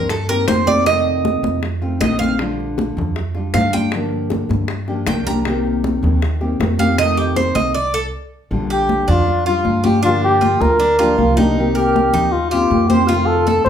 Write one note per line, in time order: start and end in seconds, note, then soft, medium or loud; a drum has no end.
0.00 0.44 G2 loud
0.00 0.11 C4 medium
0.00 0.10 G4 medium
0.09 0.29 A4 medium
0.09 muted nylon-string guitar stroke medium
0.09 high bongo medium
0.09 high conga soft
0.29 0.46 D#3 medium
0.29 0.47 A#3 medium
0.29 0.48 C4 medium
0.29 0.47 G4 medium
0.29 0.48 A#4 loud
0.29 high bongo soft
0.29 high conga soft
0.47 1.38 F2 medium
0.47 0.66 D#3 soft
0.47 0.66 A#3 soft
0.47 0.65 C4 soft
0.47 0.65 G4 medium
0.47 0.67 C5 loud
0.47 high bongo medium
0.47 low bongo medium
0.47 high conga medium
0.66 0.85 D#3 medium
0.66 0.86 A#3 medium
0.66 0.85 C4 medium
0.66 0.85 G4 medium
0.66 0.86 D5 loud
0.66 high bongo soft
0.66 high conga medium
0.84 1.61 C3 medium
0.84 1.61 D#3 medium
0.84 1.62 A3 medium
0.84 1.62 C4 medium
0.84 1.63 F4 medium
0.84 1.59 D#5 loud
0.84 high bongo medium
0.84 high conga soft
1.06 high conga soft
1.25 high bongo medium
1.25 high conga loud
1.43 1.97 F2 loud
1.43 high bongo soft
1.43 high conga loud
1.63 muted nylon-string guitar stroke medium
1.63 high bongo medium
1.63 high conga soft
1.82 1.99 D#3 soft
1.82 2.00 A3 medium
1.82 2.01 C4 medium
1.82 2.00 F4 medium
1.82 high bongo soft
1.82 high conga soft
2.00 2.91 A#1 loud
2.00 2.19 D#3 soft
2.00 2.20 A3 soft
2.00 2.19 C4 soft
2.00 2.18 F4 medium
2.00 2.18 D#5 medium
2.00 high bongo medium
2.00 low bongo medium
2.00 high conga medium
2.19 2.39 D#3 medium
2.19 2.39 A3 medium
2.19 2.39 C4 medium
2.19 2.38 F4 medium
2.19 2.38 F5 loud
2.19 high conga medium
2.39 3.15 D3 medium
2.39 3.17 G3 medium
2.39 3.17 D4 medium
2.39 3.17 F4 medium
2.39 high bongo medium
2.60 high conga soft
2.78 high bongo medium
2.78 high conga loud
2.97 3.50 F2 medium
2.97 high bongo soft
2.97 high conga soft
2.97 low conga medium
3.16 muted nylon-string guitar stroke medium
3.16 high bongo medium
3.16 high conga soft
3.35 3.54 G3 medium
3.35 3.54 D4 medium
3.35 3.54 F4 medium
3.35 high bongo soft
3.35 high conga soft
3.54 4.44 G2 medium
3.54 3.73 D3 medium
3.54 3.73 G3 medium
3.54 3.74 D4 medium
3.54 3.73 F4 soft
3.54 3.73 F5 loud
3.54 high bongo medium
3.54 low bongo medium
3.54 high conga medium
3.73 3.93 G3 medium
3.73 3.93 D4 medium
3.73 3.92 F4 medium
3.73 3.92 G5 loud
3.73 high bongo soft
3.73 high conga medium
3.92 4.68 D3 medium
3.92 4.68 F3 medium
3.92 4.69 A#3 medium
3.92 4.68 D4 medium
3.92 4.69 G4 medium
3.92 high bongo medium
3.92 high conga soft
4.13 high conga soft
4.30 high bongo medium
4.30 high conga medium
4.49 5.03 G2 loud
4.49 high bongo soft
4.49 high conga loud
4.68 muted nylon-string guitar stroke medium
4.68 high bongo medium
4.68 high conga soft
4.88 5.07 F3 medium
4.88 5.07 A#3 medium
4.88 5.07 D4 medium
4.88 5.07 G4 medium
4.88 high bongo soft
4.88 high conga soft
5.07 5.97 C2 loud
5.07 5.26 F3 soft
5.07 5.26 A#3 soft
5.07 5.27 D4 medium
5.07 5.26 G4 medium
5.07 5.26 G5 loud
5.07 high bongo medium
5.07 low bongo medium
5.07 high conga medium
5.27 5.46 F3 medium
5.27 5.46 A#3 medium
5.27 5.46 D4 medium
5.27 5.45 G4 medium
5.27 5.38 A#5 loud
5.27 high conga medium
5.45 6.21 C3 medium
5.45 6.22 D#3 medium
5.45 6.22 A#3 medium
5.45 6.23 C4 medium
5.45 high bongo medium
5.45 high conga soft
5.50 6.22 G4 medium
5.65 high conga soft
5.84 high bongo medium
5.84 high conga loud
6.03 6.56 D#2 loud
6.03 high bongo soft
6.03 high conga soft
6.03 low conga medium
6.22 muted nylon-string guitar stroke medium
6.22 high bongo medium
6.41 6.59 D#3 medium
6.41 6.60 A#3 medium
6.41 6.60 C4 medium
6.41 6.59 G4 medium
6.41 high bongo soft
6.41 high conga soft
6.60 7.50 F2 loud
6.60 6.79 D#3 soft
6.60 6.79 A#3 soft
6.60 6.78 C4 soft
6.60 6.77 G4 medium
6.60 high bongo medium
6.60 low bongo medium
6.60 high conga medium
6.79 6.98 D#3 medium
6.79 6.98 A#3 medium
6.79 6.98 C4 medium
6.79 6.97 G4 medium
6.79 6.98 F5 medium
6.79 high bongo soft
6.79 high conga medium
6.98 7.74 C3 medium
6.98 7.74 D#3 medium
6.98 7.75 A3 medium
6.98 7.75 C4 medium
6.98 7.76 F4 medium
6.98 7.17 D#5 loud
6.98 high bongo medium
6.98 high conga soft
7.17 7.36 G4 medium
7.17 high conga soft
7.36 7.55 C5 medium
7.36 high bongo medium
7.36 high conga medium
7.55 8.09 C2 loud
7.55 7.74 D#5 loud
7.55 high bongo soft
7.55 high conga loud
7.74 7.93 D5 medium
7.94 8.05 A4 loud
8.51 9.04 A#1 loud
8.51 9.26 D3 medium
8.51 9.27 G3 medium
8.51 9.27 D4 medium
8.51 9.27 F4 medium
8.51 high conga soft
8.70 9.07 G4 medium
8.70 9.12 G4 loud
8.70 high conga soft
8.89 high conga loud
9.08 9.62 F2 medium
9.08 9.45 D4 medium
9.08 9.46 F4 medium
9.08 high conga soft
9.08 low conga medium
9.27 muted nylon-string guitar stroke medium
9.27 high conga soft
9.46 9.65 G3 medium
9.46 9.65 D4 medium
9.46 9.65 F4 medium
9.46 9.83 F4 medium
9.46 9.87 F4 medium
9.46 high conga soft
9.65 10.55 G2 loud
9.65 9.84 D3 soft
9.65 9.84 G3 medium
9.65 9.84 D4 medium
9.65 9.83 F4 medium
9.65 high conga medium
9.84 10.04 G3 medium
9.84 10.03 D4 medium
9.84 10.03 F4 medium
9.84 10.03 G4 medium
9.84 high conga medium
10.03 10.79 D3 medium
10.03 10.79 F3 medium
10.03 10.81 A#3 medium
10.03 10.40 D4 loud
10.03 10.80 D4 medium
10.03 10.22 F4 loud
10.03 10.81 G4 medium
10.23 10.63 G4 loud
10.23 high conga soft
10.41 10.79 F4 medium
10.41 high conga medium
10.60 11.14 D2 loud
10.60 11.37 A#4 loud
10.60 high conga loud
10.80 10.98 D4 medium
10.80 muted nylon-string guitar stroke medium
10.80 high conga soft
10.99 11.18 F3 medium
10.99 11.18 A#3 medium
10.99 11.19 D4 loud
10.99 11.18 D4 medium
10.99 11.36 F4 medium
10.99 11.18 G4 medium
10.99 high conga soft
11.18 12.08 C2 loud
11.18 11.37 F3 soft
11.18 11.37 A#3 soft
11.18 11.38 D4 medium
11.18 11.40 F4 loud
11.18 11.37 G4 medium
11.18 high conga medium
11.37 11.57 F3 medium
11.37 11.57 A#3 medium
11.37 11.56 D4 medium
11.37 11.74 D#4 medium
11.37 11.66 D#4 medium
11.37 11.56 G4 medium
11.37 high conga medium
11.56 12.32 C3 medium
11.56 12.32 D#3 medium
11.56 12.33 A#3 medium
11.56 12.34 C4 medium
11.56 12.33 G4 medium
11.56 high conga soft
11.75 12.34 G4 loud
11.75 12.12 A#4 medium
11.75 high conga soft
11.96 high conga loud
12.13 12.67 D#2 medium
12.13 12.51 D#4 medium
12.13 high conga soft
12.13 low conga medium
12.32 12.50 F4 medium
12.32 muted nylon-string guitar stroke medium
12.32 high conga soft
12.51 12.70 D#3 medium
12.51 12.71 A#3 medium
12.51 12.71 C4 medium
12.51 12.89 F4 medium
12.51 12.89 G4 medium
12.51 12.70 G4 medium
12.51 high conga soft
12.71 13.60 F2 loud
12.71 12.90 D#3 soft
12.71 12.90 A#3 soft
12.71 12.90 C4 medium
12.71 12.90 G4 soft
12.71 high conga medium
12.88 13.06 G4 medium
12.88 13.09 G4 medium
12.88 13.08 C5 medium
12.88 high conga medium
12.92 13.09 D#3 medium
12.92 13.10 A#3 medium
12.92 13.09 C4 medium
13.07 13.69 C3 medium
13.07 13.28 F4 loud
13.07 13.46 F4 loud
13.07 high conga soft
13.11 13.69 D#3 medium
13.11 13.69 A3 medium
13.11 13.69 C4 medium
13.11 13.69 F4 medium
13.26 13.64 A4 loud
13.26 high conga soft
13.47 13.69 A4 medium
13.47 high conga loud
13.64 13.69 F2 loud
13.64 13.69 C5 loud
13.64 high conga loud